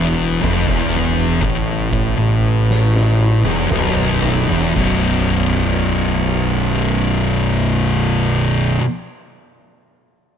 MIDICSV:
0, 0, Header, 1, 4, 480
1, 0, Start_track
1, 0, Tempo, 990099
1, 328, Time_signature, 4, 2, 24, 8
1, 810, Tempo, 1022147
1, 1770, Tempo, 1063830
1, 4777, End_track
2, 0, Start_track
2, 0, Title_t, "Distorted electric guitar"
2, 0, Program_c, 0, 30
2, 0, Note_on_c, 0, 40, 99
2, 203, Note_off_c, 0, 40, 0
2, 206, Note_on_c, 0, 41, 95
2, 319, Note_off_c, 0, 41, 0
2, 330, Note_on_c, 0, 40, 103
2, 683, Note_off_c, 0, 40, 0
2, 690, Note_on_c, 0, 45, 91
2, 922, Note_off_c, 0, 45, 0
2, 929, Note_on_c, 0, 45, 100
2, 1040, Note_off_c, 0, 45, 0
2, 1047, Note_on_c, 0, 45, 92
2, 1641, Note_off_c, 0, 45, 0
2, 1645, Note_on_c, 0, 40, 96
2, 1761, Note_off_c, 0, 40, 0
2, 1771, Note_on_c, 0, 35, 97
2, 2114, Note_off_c, 0, 35, 0
2, 2115, Note_on_c, 0, 40, 96
2, 2233, Note_off_c, 0, 40, 0
2, 2236, Note_on_c, 0, 35, 94
2, 2246, Note_on_c, 0, 42, 97
2, 2254, Note_on_c, 0, 47, 89
2, 4055, Note_off_c, 0, 35, 0
2, 4065, Note_off_c, 0, 42, 0
2, 4073, Note_off_c, 0, 47, 0
2, 4777, End_track
3, 0, Start_track
3, 0, Title_t, "Fingered electric bass"
3, 0, Program_c, 1, 33
3, 0, Note_on_c, 1, 28, 90
3, 190, Note_off_c, 1, 28, 0
3, 210, Note_on_c, 1, 29, 90
3, 320, Note_off_c, 1, 29, 0
3, 332, Note_on_c, 1, 28, 91
3, 671, Note_off_c, 1, 28, 0
3, 690, Note_on_c, 1, 33, 85
3, 912, Note_off_c, 1, 33, 0
3, 930, Note_on_c, 1, 33, 90
3, 1039, Note_off_c, 1, 33, 0
3, 1049, Note_on_c, 1, 33, 85
3, 1630, Note_off_c, 1, 33, 0
3, 1640, Note_on_c, 1, 28, 86
3, 1757, Note_off_c, 1, 28, 0
3, 1767, Note_on_c, 1, 23, 91
3, 2106, Note_off_c, 1, 23, 0
3, 2125, Note_on_c, 1, 28, 89
3, 2237, Note_off_c, 1, 28, 0
3, 2242, Note_on_c, 1, 23, 84
3, 4042, Note_off_c, 1, 23, 0
3, 4777, End_track
4, 0, Start_track
4, 0, Title_t, "Drums"
4, 213, Note_on_c, 9, 36, 102
4, 261, Note_off_c, 9, 36, 0
4, 331, Note_on_c, 9, 36, 100
4, 336, Note_on_c, 9, 46, 50
4, 380, Note_off_c, 9, 36, 0
4, 385, Note_off_c, 9, 46, 0
4, 466, Note_on_c, 9, 38, 32
4, 515, Note_off_c, 9, 38, 0
4, 691, Note_on_c, 9, 36, 111
4, 739, Note_off_c, 9, 36, 0
4, 810, Note_on_c, 9, 46, 51
4, 857, Note_off_c, 9, 46, 0
4, 930, Note_on_c, 9, 36, 106
4, 977, Note_off_c, 9, 36, 0
4, 1297, Note_on_c, 9, 38, 55
4, 1344, Note_off_c, 9, 38, 0
4, 1417, Note_on_c, 9, 38, 57
4, 1464, Note_off_c, 9, 38, 0
4, 1644, Note_on_c, 9, 48, 63
4, 1691, Note_off_c, 9, 48, 0
4, 1765, Note_on_c, 9, 47, 76
4, 1810, Note_off_c, 9, 47, 0
4, 1999, Note_on_c, 9, 43, 77
4, 2044, Note_off_c, 9, 43, 0
4, 2121, Note_on_c, 9, 43, 79
4, 2166, Note_off_c, 9, 43, 0
4, 2240, Note_on_c, 9, 49, 76
4, 2243, Note_on_c, 9, 36, 97
4, 2286, Note_off_c, 9, 49, 0
4, 2288, Note_off_c, 9, 36, 0
4, 4777, End_track
0, 0, End_of_file